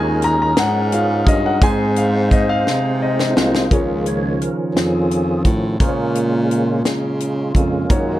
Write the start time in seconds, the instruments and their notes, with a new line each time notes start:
Already playing: baritone saxophone D#2, grand piano G#3 C#4 F4 G#5, tonewheel organ C#4 D#4 G#4 A#4
0.22 grand piano A#5, closed hi-hat
0.42 grand piano A#5
0.56 baritone saxophone G#2, grand piano F#5, snare, closed hi-hat
0.92 grand piano G#3 C#4 F4 F5, closed hi-hat
1.27 baritone saxophone G2, grand piano D#5, kick, closed hi-hat
1.46 grand piano F#5
1.62 baritone saxophone G#2, grand piano G#3 C4 D#4 G#5, tonewheel organ G#3 C4 D#4 C5, kick, closed hi-hat
1.96 grand piano F5, closed hi-hat
2.31 grand piano D#5, kick, closed hi-hat
2.49 grand piano F5
2.67 baritone saxophone C3, snare
3.02 grand piano D#5
3.19 snare
3.30 tonewheel organ E4
3.36 baritone saxophone C2, tonewheel organ G#3 A#3 F4, snare
3.55 snare
3.70 baritone saxophone C#2, grand piano C#3 F4 G#4 A#4 C#5, tonewheel organ D#3 F3 C#4, kick, closed hi-hat
4.06 tonewheel organ C#5, closed hi-hat
4.41 tonewheel organ A#4, closed hi-hat
4.75 baritone saxophone F2, tonewheel organ F4 G#4, snare, closed hi-hat
5.11 closed hi-hat
5.45 baritone saxophone A2, kick, closed hi-hat
5.80 baritone saxophone A#2, grand piano A#2 A#3 F4 G#4 C5, tonewheel organ C#3 G#3 A#3 C#4, kick, closed hi-hat
5.84 tonewheel organ F4
5.89 grand piano C#5
6.15 closed hi-hat
6.51 closed hi-hat
6.85 baritone saxophone C#3, snare, closed hi-hat
7.20 closed hi-hat
7.54 baritone saxophone F2, tonewheel organ C#3 G#3 A#3 C#4 F4, kick, closed hi-hat
7.89 baritone saxophone F#2, tonewheel organ D#3 G#3 A#3, grand piano A#3 D#4 F#4 C#5, kick, closed hi-hat